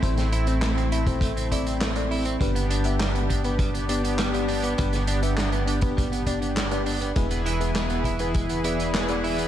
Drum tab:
HH |xxxxxxxxxxxxxxox|xxxxxxxxxxxxxxox|xxxxxxxxxxxxxxox|xxxxxxxxxxxxxxox|
CP |----x-------x---|----x-------x---|----x-------x---|----x-------x---|
SD |-o--o-------o---|----o-------o---|-o--o-------o---|----o-------o---|
BD |o------oo-o-----|o-----o-o-------|o------oo-o-----|o-----o-o-------|